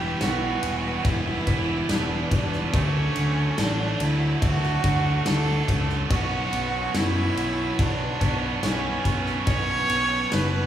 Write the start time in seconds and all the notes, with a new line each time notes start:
Already playing: E1 E3 G3 B3 E4 G4 B4 E5 F#5
0.21 B1 F#4, snare, ride
0.63 E1, ride
1.05 E1 E4, kick, ride
1.47 E1 E3 G3 B3 E4, kick, ride
1.88 E1 E3 G3 B3 D4 E4, snare, ride
2.31 E1 D4, kick, ride
2.52 snare
2.73 D2 D3 F#3 A3 C#4 D4 F#4 C#5 F#5 A5, kick, ride
3.16 D2, ride
3.58 A1 D4, snare, ride
4.00 D2 E4, ride
4.42 D2 F#4, kick, ride
4.63 snare
4.84 D2 D3 F#3 A3 D4, kick, ride
5.26 D2 D3 F#3 A3 D4 A4, snare, ride
5.68 C#2, kick, ride
5.89 snare
6.10 B1 B2 F#3 B3 C#4 F#4 B4 B5, kick, ride
6.53 B1, ride
6.94 F#2 E4, snare, ride
7.37 B1, ride
7.79 B1 D4, kick, ride
8.20 B1 B2 F#3 B3 C#4, kick, ride
8.63 B1 B2 F#3 B3 C#4, snare, ride
9.05 B1, kick, ride
9.26 snare
9.46 B1 B2 F#3 B3 C#4 C#5, kick, ride
9.89 B1, ride
10.32 F#1 B4, snare, ride